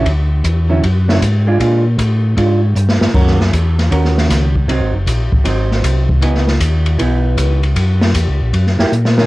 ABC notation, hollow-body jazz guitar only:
X:1
M:4/4
L:1/8
Q:"Swing" 1/4=156
K:C#dor
V:1 name="Hollow-body jazz guitar"
z3 [=D,F,CE] z [D,F,CE] z [G,=D^E] | [G,=D^E] z3 [G,DE] z3 | [D,CFA] z3 [D,CFA]3 z | [F,^B,D] z3 [F,B,D]3 z |
[E,B,D] z3 [E,B,D]3 z | z4 z [F,A,E=G] z [D,A,C] |]